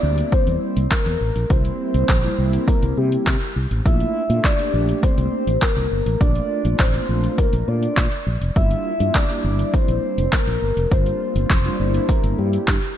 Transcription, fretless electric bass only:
0.03 D2
0.47 E2
0.77 C2
1.06 E2
1.21 A1
1.36 A#1
1.50 C2
1.94 C2
2.09 A#1
2.38 C2
2.83 C2
2.97 C3
3.27 C3
3.56 C2
3.71 A1
3.86 A#1
4.30 A#2
4.74 A#1
5.18 C2
5.47 A1
5.77 C2
5.91 G1
6.06 A1
6.21 A#1
6.65 A#1
6.79 A1
7.09 A#1
7.53 A#1
7.68 A#2
7.97 A#2
8.27 A#1
8.41 F1
8.56 G1
9.00 G2
9.44 G1
9.88 A#1
10.18 F1
10.47 A#1
10.62 G1
10.77 F1
10.91 G1
11.36 G1
11.50 F1
11.80 G1
12.24 G1
12.38 G2
12.68 G2

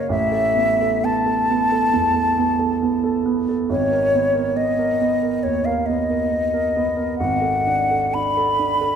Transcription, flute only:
0.10 E5
1.05 A5
3.71 C#5
4.57 D#5
5.43 C#5
5.65 F5
5.86 D#5
7.18 F#5
8.14 B5

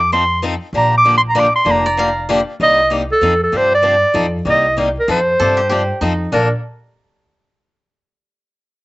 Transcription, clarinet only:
Already playing: D6
0.13 C6
0.77 A#5
0.97 D6
1.18 C6
1.29 A#5
1.39 D6
1.56 C6
1.71 A#5
2.63 D#5
3.12 A4
3.44 A4
3.57 C5
3.74 D5
4.50 D#5
5.00 A#4
5.11 C5
6.34 A#4

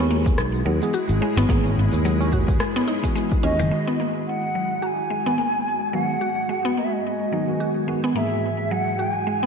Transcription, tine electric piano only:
Already playing: G#3 E4 G#4
0.81 E3 G#3 B3 G#4
1.48 E3 G#3 B3 G#4
3.02 E3 G#3 B3
3.06 F#4
3.69 D#3 G#3
3.73 F#4
5.25 D#3 G#3 B3 F#4
5.93 D#3 G#3 B3 F#4
7.31 D#3 G#3 B3 D#4
7.47 D#3 G#3 B3 F#4
7.87 D#3 G#3 B3 F#4
8.14 G#2 E3 G#3
8.18 G#4

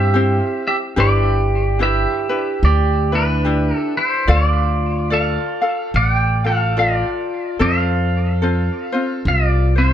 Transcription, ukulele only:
Already playing: C4 E4 C5
0.14 C4 E4 G4 C5
0.96 D4 E4 G4 B4
1.79 D4 E4 G4 B4
2.29 D4 E4 B4
3.12 D4 E4 B4
3.45 D4 E4 G4
4.28 F4 A4 D5 F5
5.10 F4 A4 D5 F5
5.62 F4 A4 F5
6.44 F4 A4 F5
6.77 F4 A4 D5 F5
7.59 C4 F4 A4 C5
8.42 C4 F4 A4 C5
8.92 C4 F4 C5
9.76 C4 C5

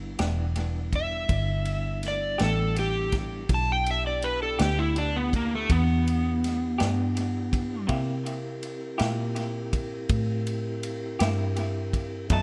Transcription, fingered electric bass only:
Already playing: G1
0.20 E1
1.30 G1
2.41 A1
3.50 B1
4.60 D2
5.70 E2
6.81 G2
7.89 C3
9.01 A#2
10.10 A2
11.21 G2
12.30 F#2

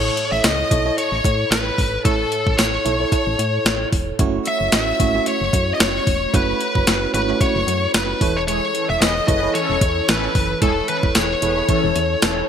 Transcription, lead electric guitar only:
Already playing: C#5
0.32 E5
0.45 D#5
0.98 C#5
1.50 B4
2.05 A4
2.57 C#5
4.48 E5
4.75 E5
5.28 C#5
5.74 D#5
5.81 C#5
6.35 B4
7.14 B4
7.41 C#5
7.95 B4
8.37 C#5
8.48 C#5
8.90 E5
9.01 D#5
9.28 D#5
9.55 C#5
10.08 B4
10.62 A4
10.89 B4
11.16 C#5

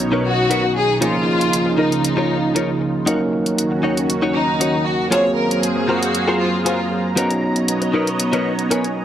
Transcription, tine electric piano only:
Already playing: F#3 B3 C#4 D#4 A#5
1.01 F3 A#3 C#4 D#4 G#4
3.06 F#3 A#3 C#4 D#4 A#4
5.11 F#3 A#3 C4 G#4 F5
7.16 F#3 B3 C#4 D#4 A#5

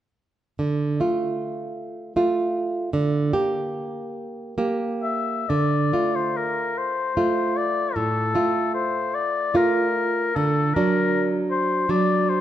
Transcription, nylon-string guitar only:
0.59 D3
1.00 A3 F4
2.16 A3 F4
2.93 D3
3.33 A#3 G4
4.58 A#3 G4
5.50 D3
5.93 A3 F4
7.17 A3 F4
7.96 A2
8.35 A3 F4
9.54 A3 F4
10.36 D3
10.76 F#3 D4
11.89 F#3 D4

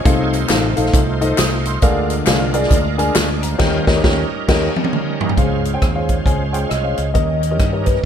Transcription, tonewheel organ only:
Already playing: G#4 C#5
0.05 A3 D#4 F4 C5
1.82 G#3 D4 F4 A#4
2.99 F4 A#4
3.16 G#4 D5
3.44 C5 F5
3.61 G3 C#4 D#4 A#4
5.36 G#3 C#4 F4 C5
7.14 G3 C#4 D#4 A#4

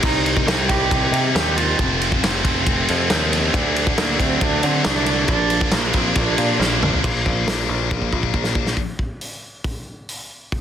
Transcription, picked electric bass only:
0.03 C2
0.46 C2
0.69 C2
0.91 C2
1.12 C3
1.35 D#2
1.79 F1
2.23 F1
2.44 F1
2.67 F1
2.90 F2
3.11 D#2
3.54 D2
3.98 D2
4.20 D2
4.41 D2
4.63 D3
4.86 C2
5.28 A#1
5.73 A#1
5.94 A#1
6.16 A#1
6.38 A#2
6.59 A#1
7.04 A#1
7.26 A#1
7.47 A#1
7.69 A#1
7.91 A#1
8.13 A#1
8.34 A#1

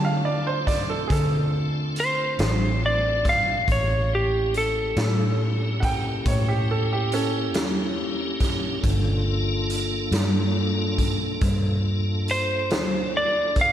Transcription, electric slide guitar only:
2.00 C5
2.86 D5
3.29 F5
3.72 C#5
4.15 G4
4.58 A4
12.31 C5
13.17 D5
13.61 F5

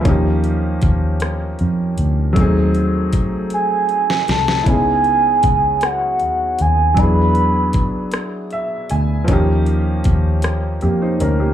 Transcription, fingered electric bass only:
0.06 D#2
0.83 D#2
1.61 F2
1.99 D2
2.37 D#2
3.14 C2
4.29 C2
4.67 C#2
5.45 C#2
6.22 D#2
6.61 D#2
6.98 E2
7.75 C#2
8.92 D2
9.29 D#2
10.06 D#2
10.84 F2
11.22 D2

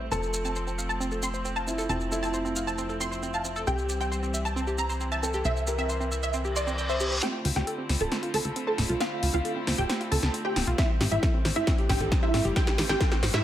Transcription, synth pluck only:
0.12 A5
0.45 A5
0.89 A5
1.23 C6
1.56 A5
1.89 A5
2.23 A5
2.67 A5
3.01 C6
3.34 A5
3.67 G5
4.01 G5
4.45 A5
4.78 A#5
5.12 A5
5.45 E5
5.79 E5
6.23 E5
6.56 D5
6.89 C5
7.23 G4 G5
7.56 G4 G5
8.01 A4 A5
8.34 A4 A5
8.67 A4 A5
9.01 F4 F5
9.34 F4 F5
9.78 G4 G5
10.11 A4 A5
10.45 G4 G5
10.78 E4 E5
11.12 E4 E5
11.56 E4 E5
11.89 G4 G5
12.23 E4 E5
12.56 G4 G5
12.89 G4 G5
13.34 E4 E5

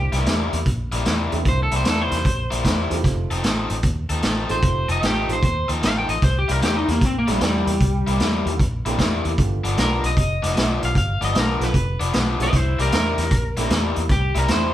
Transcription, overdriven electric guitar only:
0.12 C3 G3 A#3 E4
0.26 C3 G3 A#3 E4
0.92 C3 G3 A#3 E4
1.05 C3 G3 A#3 E4
1.72 C3 G3 A#3 E4
1.85 C3 G3 A#3 E4
2.51 C3 G3 A#3 E4
2.64 C3 G3 A#3 E4
3.31 F3 C4 D#4 A4
3.43 F3 C4 D#4 A4
4.09 F3 C4 D#4 A4
4.23 F3 C4 D#4 A4
4.89 F3 C4 D#4 A4
5.02 F3 C4 D#4 A4
5.68 F3 C4 D#4 A4
5.82 F3 C4 D#4 A4
6.48 C3 G3 A#3 E4
6.62 C3 G3 A#3 E4
7.28 C3 G3 A#3 E4
7.41 C3 G3 A#3 E4
8.07 C3 G3 A#3 E4
8.19 C3 G3 A#3 E4
8.86 C3 G3 A#3 E4
9.00 C3 G3 A#3 E4
9.64 G2 F3 B3 D4
9.77 G2 F3 B3 D4
10.43 G2 F3 B3 D4
10.56 G2 F3 B3 D4
11.21 G2 F3 B3 D4
11.34 G2 F3 B3 D4
12.00 G2 F3 B3 D4
12.13 G2 F3 B3 D4
12.79 C3 G3 A#3 E4
12.92 C3 G3 A#3 E4
13.57 C3 G3 A#3 E4
13.70 C3 G3 A#3 E4
14.35 C3 G3 A#3 E4
14.48 C3 G3 A#3 E4

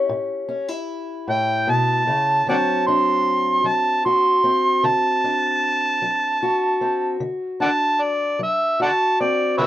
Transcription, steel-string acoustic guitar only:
Already playing: C#4 E4 G4
0.09 A2
0.49 C#4
0.68 E4
1.28 A2
1.67 B2
2.07 C#3
2.46 D3 F#3 C4 D4 F#4
2.88 D4
3.64 F#3
4.06 F#4
4.44 C4
4.84 D3
5.24 D4
6.02 F#3
6.43 F#4
6.81 C4
7.20 D3
7.60 D4
8.39 F#3
8.80 F#4
9.21 C4
9.59 D3

